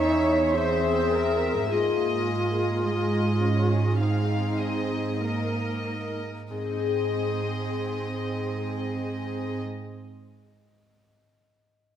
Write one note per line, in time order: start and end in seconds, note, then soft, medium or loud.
0.00 1.66 E2 soft
0.00 1.01 G#3 soft
0.00 0.54 C#4 soft
0.00 0.56 D#4 medium
0.00 0.51 C#5 soft
0.00 0.54 E5 soft
0.54 1.70 C4 soft
0.54 1.70 G#4 medium
0.54 1.13 C5 soft
0.54 1.68 E5 soft
1.13 1.70 A#4 soft
1.52 5.42 G#2 soft
1.56 5.46 A#3 soft
1.61 5.51 D#4 soft
1.66 5.55 G#4 soft
1.70 6.27 G#2 soft
1.70 2.82 A#3 soft
1.70 4.00 F4 medium
1.70 2.82 G#4 soft
1.70 2.82 D#5 soft
2.84 3.41 G#3 soft
2.84 3.97 G#4 soft
2.84 3.96 D#5 soft
3.41 3.99 C#4 soft
3.98 5.20 C4 soft
3.98 6.21 D#4 soft
3.98 5.18 G#4 soft
3.98 4.57 F5 soft
4.58 5.18 D#5 soft
5.20 6.27 A#3 soft
5.20 6.27 A#4 soft
5.20 6.24 D#5 soft
6.50 10.40 G#2 soft
6.50 9.60 G#2 soft
6.50 9.60 C4 soft
6.50 9.60 G#4 soft
6.50 9.60 D#5 soft
6.57 10.02 G#3 soft
6.64 9.73 C4 soft
6.71 9.80 D#4 soft
6.78 9.87 G#4 soft
6.85 9.94 D#5 soft